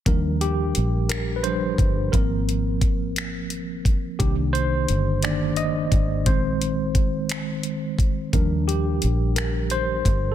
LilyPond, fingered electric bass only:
\new Staff \with { instrumentName = "Fingered electric bass" } { \clef bass \time 6/8 \key ees \major \tempo 4. = 58 ees,4 bes,,4. g,,8 | aes,,2~ aes,,8 bes,,8 | c,4 g,,4. aes,,8 | bes,,2~ bes,,8 d,8 |
ees,4 bes,,4. g,,8 | }